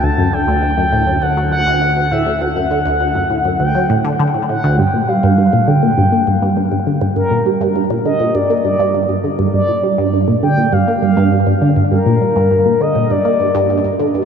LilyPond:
<<
  \new Staff \with { instrumentName = "Analog synth lead" } { \time 4/4 \key d \mixolydian \tempo 4 = 101 a''8 g''4. fis''8 fis''4 e''8 | fis''2 g''4 r8 fis''8 | \key g \minor g''8 f''4 g''2 r8 | bes'4 r8 ees''8 d''8 d''4 r8 |
d''4 r8 g''8 f''8 f''4 r8 | bes'4. ees''8 d''4. r8 | }
  \new Staff \with { instrumentName = "Synth arpeggio sound" } { \clef bass \time 4/4 \key d \mixolydian d,16 fis,16 d16 d,16 d,16 fis,16 a,16 fis,16 d,16 fis16 d,16 d,16 d,16 d,16 a,16 d,16 | d,16 fis,16 d16 d,16 d,16 fis,16 a,16 fis,16 d,16 fis16 a,16 d16 d16 a,16 a,16 d,16 | \key g \minor g,16 bes,16 g16 g,16 g,16 bes,16 d16 bes,16 g,16 bes16 g,16 g,16 g,16 g,16 d16 g,16 | g,16 bes,16 g16 g,16 g,16 bes,16 d16 bes,16 g,16 bes16 g,16 g,16 g,16 g,16 d16 g,16 |
g,16 bes,16 g16 g,16 g,16 bes,16 d16 bes,16 g,16 bes16 g,16 g,16 g,16 g,16 d16 g,16 | g,16 bes,16 g16 g,16 g,16 bes,16 d16 bes,16 g,16 bes16 g,16 g,16 g,16 g,16 d16 g,16 | }
  \new Staff \with { instrumentName = "Analog synth bass" } { \clef bass \time 4/4 \key d \mixolydian d,1~ | d,1 | \key g \minor r1 | r1 |
r1 | r1 | }
>>